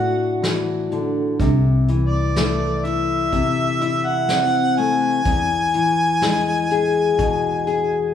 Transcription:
Already playing: A2 D3 A3 D4 F#4 F#5
0.42 E3, snare, closed hi-hat
0.91 D3, closed hi-hat
1.40 C2 C3, kick, closed hi-hat
1.88 E3, closed hi-hat
2.06 D5
2.36 A3, snare, closed hi-hat
2.77 D5
2.85 E4 E5, closed hi-hat
3.32 E2 C3, kick, closed hi-hat
3.81 E4, closed hi-hat
4.05 F#5
4.29 C4, snare, closed hi-hat
4.77 A3 G#5, closed hi-hat
5.25 E2, kick, closed hi-hat
5.74 E3, closed hi-hat
6.22 G#3, snare, closed hi-hat
6.70 G#4, closed hi-hat
7.18 B1 B2, kick, closed hi-hat
7.67 G#4, closed hi-hat

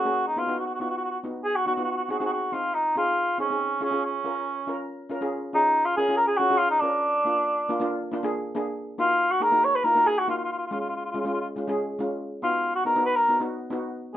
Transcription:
Already playing: F#4
0.05 A#3 C#4 G#4
0.27 D#4
0.36 B3 D#4 F4 F#4
0.47 B3 D#4 F#4
0.59 F#4
0.66 F#4
0.74 F#4
0.80 B3 D#4 F4 F#4
0.90 F#4
0.97 F#4
1.04 F#4
1.11 F#4
1.24 B3 D#4 F#4
1.44 G#4
1.56 F#4
1.66 B3 D#4 F#4
1.75 B3 D#4 F#4
1.79 F4
1.84 F#4
1.91 F#4
1.97 F#4
2.04 F#4
2.09 C4 D#4 F#4 G#4
2.19 C4 D#4 F#4 G#4
2.25 F#4
2.33 F#4
2.52 C4 D#4 F4
2.74 D#4
2.96 C4 D#4 F4 G#4
3.38 C4 C#4 D#4 G#4
3.51 C4 D#4 G#4
3.81 C#4 F4 G#4
3.91 C#4 F4 G#4
4.05 C#4
4.24 C#4 F4 A#4
4.67 C#4 F4 A#4
5.09 C#4 F4 A#4
5.21 C#4 F4 G#4
5.53 C#4 D#4 F4 G#4
5.85 F4
5.97 C#4 F4 G#4 A#4
6.09 C#4 F4 G#4
6.17 A#4
6.27 G#4
6.37 C#4 F4 F#4
6.41 G#4
6.50 C#4 F4 G#4
6.58 F4
6.70 D#4
6.80 C#4 D4 F4 A#4
7.25 A#3 D4 F4
7.69 A#3 D4 F4
7.80 A#3 D4 F4
8.12 A#3 D4 F4
8.23 A#3 D4 G#4
8.55 A#3 D4 G#4
8.98 A#3 D#4 F4 F#4
9.31 F#4
9.40 A#3 D#4 G#4 A#4
9.51 A#3 D#4 F#4
9.64 C#5
9.75 B4
9.84 A#3 D#4 F4 A#4
9.95 A#3 D#4 F#4
10.06 G#4
10.18 F#4
10.28 A#3 D#4 F4 F#4
10.37 F4
10.44 F4
10.52 F4
10.58 F4
10.67 F4
10.71 G#3 C#4 F4
10.80 F4
10.89 F4
10.96 F4
11.05 F4
11.11 G#3 C#4 F4
11.20 F4
11.25 G#3 C#4 F4
11.33 F4
11.41 F4
11.56 G#3 C#4 F4
11.67 G#3 C#4 G#4
11.99 G#3 C#4 F4
12.42 B3 D#4 F4 F#4
12.75 F#4
12.85 B3 D#4 F#4 A#4
12.96 B3 D#4 F#4
13.06 B4
13.16 A#4
13.29 B3 D#4 F#4
13.40 B3 D#4 F#4
13.70 B3 D#4 F#4

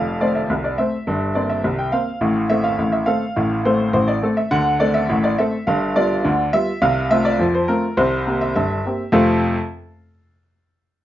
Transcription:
Already playing: F1 F2 F5
0.21 A3 C4 C5 D5
0.35 E5
0.50 C2 C3
0.64 D5
0.78 A3 C4 C5 E5
1.07 G1 G2
1.35 A#3 C4 C5 D5
1.50 E5
1.64 C2 C3
1.79 G5
1.92 A#3 C4 C5 F5
2.21 A1 A2
2.50 A3 C4 A4 E5
2.64 F5
2.79 A1 A2
2.92 E5
3.06 A3 C4 A4 F5
3.36 A1 A2
3.65 A3 C4 A4 C5
3.93 A1 A2 C5
4.08 D5
4.23 A3 C4 A4
4.37 E5
4.51 D2 D3 F#5
4.80 A3 C4 A4 D5
4.94 E5
5.09 A1 A2
5.24 D5
5.38 A3 C4 A4 E5
5.67 G1 G2 F5
5.96 G3 B3 F4 D5
6.24 D2 D3
6.53 G3 B3 F4 E5
6.82 C2 C3 F5
7.11 A3 C4 F4 E5
7.25 D5
7.39 F2 F3
7.55 C5
7.68 A3 C4 F4 A#4
7.97 C2 C3 C5
8.27 A#3 C4 G4
8.41 E5
8.56 G1 G2 E5
8.86 A#3 C4 G4
9.12 F2 C3 A3 C4 F4 A4 F5

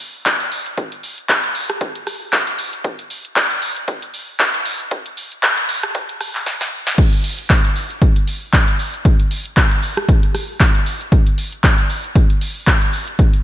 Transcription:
0.00 open hi-hat
0.26 kick, clap, closed hi-hat
0.40 closed hi-hat
0.52 open hi-hat
0.66 closed hi-hat
0.78 kick, closed hi-hat
0.92 closed hi-hat
1.03 open hi-hat
1.18 closed hi-hat
1.29 kick, clap, closed hi-hat
1.44 closed hi-hat
1.55 open hi-hat
1.70 cross-stick, closed hi-hat
1.81 kick, closed hi-hat
1.95 closed hi-hat
2.07 cross-stick, open hi-hat
2.33 kick, clap, closed hi-hat
2.47 closed hi-hat
2.59 open hi-hat
2.73 closed hi-hat
2.84 kick, closed hi-hat
2.99 closed hi-hat
3.10 open hi-hat
3.25 closed hi-hat
3.36 kick, clap, closed hi-hat
3.51 closed hi-hat
3.62 open hi-hat
3.76 closed hi-hat
3.88 kick, closed hi-hat
4.02 closed hi-hat
4.14 open hi-hat
4.40 kick, clap, closed hi-hat
4.54 closed hi-hat
4.66 open hi-hat
4.80 closed hi-hat
4.91 kick, closed hi-hat
5.06 closed hi-hat
5.17 open hi-hat
5.32 closed hi-hat
5.43 kick, clap, closed hi-hat
5.57 closed hi-hat
5.69 open hi-hat
5.83 cross-stick, closed hi-hat
5.95 kick, closed hi-hat
6.09 closed hi-hat
6.21 cross-stick, open hi-hat
6.35 clap
6.46 snare
6.61 snare
6.87 snare
6.98 kick, closed hi-hat, crash
7.13 closed hi-hat
7.24 open hi-hat
7.39 closed hi-hat
7.50 kick, clap, closed hi-hat
7.64 closed hi-hat
7.76 open hi-hat
7.90 closed hi-hat
8.02 kick, closed hi-hat
8.16 closed hi-hat
8.28 open hi-hat
8.53 kick, clap, closed hi-hat
8.68 closed hi-hat
8.79 open hi-hat
8.94 closed hi-hat
9.05 kick, closed hi-hat
9.20 closed hi-hat
9.31 open hi-hat
9.45 closed hi-hat
9.57 kick, clap, closed hi-hat
9.71 closed hi-hat
9.83 open hi-hat
9.97 cross-stick, closed hi-hat
10.09 kick, closed hi-hat
10.23 closed hi-hat
10.35 cross-stick, open hi-hat
10.60 kick, clap, closed hi-hat
10.75 closed hi-hat
10.86 open hi-hat
11.01 closed hi-hat
11.12 kick, closed hi-hat
11.27 closed hi-hat
11.38 open hi-hat
11.52 closed hi-hat
11.64 kick, clap, closed hi-hat
11.78 closed hi-hat
11.90 open hi-hat
12.04 closed hi-hat
12.16 kick, closed hi-hat
12.30 closed hi-hat
12.41 open hi-hat
12.67 kick, clap, closed hi-hat
12.82 closed hi-hat
12.93 open hi-hat
13.08 closed hi-hat
13.19 kick, closed hi-hat
13.33 closed hi-hat

